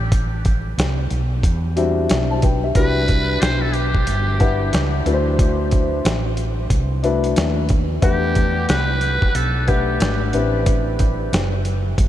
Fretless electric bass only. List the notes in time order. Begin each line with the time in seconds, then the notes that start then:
Already playing: A1
0.78 C2
1.11 B1
1.44 E2
2.10 B1
2.76 C2
3.42 B1
4.07 G1
4.74 C#2
5.06 D2
6.05 A1
6.70 C2
7.37 D#2
8.03 E2
8.69 C2
9.22 muted fretless electric bass stroke
9.35 B1
10.00 G#1
10.34 A1
11.33 F#1
11.98 G1